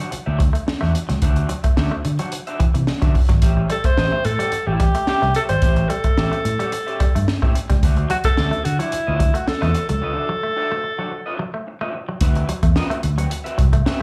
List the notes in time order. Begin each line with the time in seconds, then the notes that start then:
Already playing: F#5
0.00 D4 F#4 C5, closed hi-hat
0.11 muted clean electric guitar stroke, muted fingered electric bass stroke, closed hi-hat
0.26 D2 D4 F#4 C5 E5
0.39 F#3, muted clean electric guitar stroke, kick, closed hi-hat
0.53 A3, muted clean electric guitar stroke, closed hi-hat
0.66 muted clean electric guitar stroke, muted fingered electric bass stroke, snare
0.81 E2 A3 D4 F#4 C5 E5, snare
0.94 muted clean electric guitar stroke, closed hi-hat
1.09 C#2 F#3, muted clean electric guitar stroke, snare, closed hi-hat
1.22 D2 D4 F#4 C5 E5, kick, closed hi-hat
1.36 muted clean electric guitar stroke, closed hi-hat
1.49 F#3, closed hi-hat
1.63 A3, muted clean electric guitar stroke, muted fingered electric bass stroke, kick, closed hi-hat
1.76 D2 D4 F#4 C5 E5, snare
1.91 A3
2.05 D3, muted clean electric guitar stroke, closed hi-hat
2.19 F#3 D4 F#4 C5 F#5, closed hi-hat
2.32 muted clean electric guitar stroke, closed hi-hat
2.47 D4 F#4 C5 E5, closed hi-hat
2.60 E3, muted clean electric guitar stroke, muted fingered electric bass stroke, kick, closed hi-hat
2.74 C3 E3, muted clean electric guitar stroke, closed hi-hat
2.87 muted clean electric guitar stroke, snare
3.02 D3 F#3 D4 F#4 C5 E5, kick, snare, closed hi-hat
3.15 muted clean electric guitar stroke, kick, open hi-hat
3.29 G#1 F#3, muted clean electric guitar stroke, kick, snare, closed hi-hat
3.42 A1 C#4 G4 C5 E5, kick, closed hi-hat
3.57 muted clean electric guitar stroke
3.70 G3 A4, closed hi-hat
3.84 A3 C5, muted clean electric guitar stroke, muted fingered electric bass stroke, kick, closed hi-hat
3.97 A1 C#4 G4 C5 E5, snare
4.12 A3
4.25 A2 A4, muted clean electric guitar stroke, closed hi-hat
4.39 G3 C#4 G4 C5 F#5, closed hi-hat
4.52 muted fingered electric bass stroke, muted clean electric guitar stroke, closed hi-hat
4.67 A1 C#4 G4 C5 E5
4.73 E4
4.80 G3 G4, muted clean electric guitar stroke, kick, closed hi-hat
4.95 A3, muted clean electric guitar stroke, closed hi-hat
5.07 C#4 G4 C5 E5, muted fingered electric bass stroke, snare
5.22 C2 A3, muted clean electric guitar stroke, snare
5.35 C#4 G4 A4 C5 E5, muted clean electric guitar stroke, closed hi-hat
5.49 G#1 G3 C5, muted clean electric guitar stroke, closed hi-hat
5.62 A1 C#4 G4 C5 E5, kick, closed hi-hat
5.76 muted clean electric guitar stroke, closed hi-hat
5.89 G3 A4, closed hi-hat
6.04 A3, muted fingered electric bass stroke, muted clean electric guitar stroke, kick, closed hi-hat
6.17 A1 C#4 G4 C5 E5, snare
6.32 A3, closed hi-hat
6.44 A2, muted clean electric guitar stroke, closed hi-hat
6.59 G3 C#4 G4 C5 F#5, closed hi-hat
6.72 muted clean electric guitar stroke, closed hi-hat
6.86 C#4 G4 C5 E5, closed hi-hat
7.00 G3, muted clean electric guitar stroke, muted fingered electric bass stroke, kick, closed hi-hat
7.14 G2 A3, muted clean electric guitar stroke, closed hi-hat
7.27 muted clean electric guitar stroke, snare
7.42 A2 A3 C#4 G4 C5 E5, kick
7.55 muted clean electric guitar stroke, closed hi-hat
7.70 C#2 G3, muted clean electric guitar stroke, kick, snare, closed hi-hat
7.83 D2 D4 F#4 C5 E5, kick, closed hi-hat
7.96 muted clean electric guitar stroke, closed hi-hat
8.10 F#3 F#4, closed hi-hat
8.24 A3 A4, muted clean electric guitar stroke, muted fingered electric bass stroke, kick, closed hi-hat
8.37 D2 D4 F#4 C5 E5, snare
8.51 A3, closed hi-hat
8.64 D3 F#4, muted clean electric guitar stroke, closed hi-hat
8.79 F#3 D4 E4 F#4 C5 F#5, closed hi-hat
8.92 muted clean electric guitar stroke, muted fingered electric bass stroke, closed hi-hat
9.07 D2 D4 F#4 C5 E5
9.20 F#3, muted clean electric guitar stroke, kick, closed hi-hat
9.34 A3 F#4, muted clean electric guitar stroke, closed hi-hat
9.47 A4, muted clean electric guitar stroke, muted fingered electric bass stroke, snare
9.61 E2 A3 D4 F#4 C5 E5, snare
9.75 muted clean electric guitar stroke, closed hi-hat
9.89 C#2 F#3 A4, muted clean electric guitar stroke, closed hi-hat
10.02 C#4 F4 B4 E5
10.13 D4 F#4 C5
10.17 muted clean electric guitar stroke
10.29 F#3
10.43 A3, muted clean electric guitar stroke
10.56 D4 F#4 C5 E5
10.72 A3
10.83 muted clean electric guitar stroke
10.98 F#3 D4 F#4 C5 F#5
11.11 muted clean electric guitar stroke
11.26 D4 F#4 C5 E5
11.39 F#3, muted clean electric guitar stroke
11.54 A3, muted clean electric guitar stroke
11.67 muted clean electric guitar stroke
11.81 A3 D4 F#4 C5 E5
11.94 muted clean electric guitar stroke
12.09 F#3, muted clean electric guitar stroke
12.21 D2 C4 F#4 B4 E5, kick, closed hi-hat
12.35 muted clean electric guitar stroke, closed hi-hat
12.49 F#3, closed hi-hat
12.63 E2 A3, muted clean electric guitar stroke, kick, closed hi-hat
12.75 C4 F#4 B4 E5, snare
12.90 A3, closed hi-hat
13.03 D2, muted clean electric guitar stroke, closed hi-hat
13.18 F#3 C4 F#4 B4 F#5, closed hi-hat
13.31 muted clean electric guitar stroke, closed hi-hat
13.44 C4 F#4 B4 E5, closed hi-hat
13.58 C2 F#3, muted clean electric guitar stroke, kick, closed hi-hat
13.72 A3, muted clean electric guitar stroke, kick, closed hi-hat
13.86 C4 F#4 B4 E5, muted fingered electric bass stroke, snare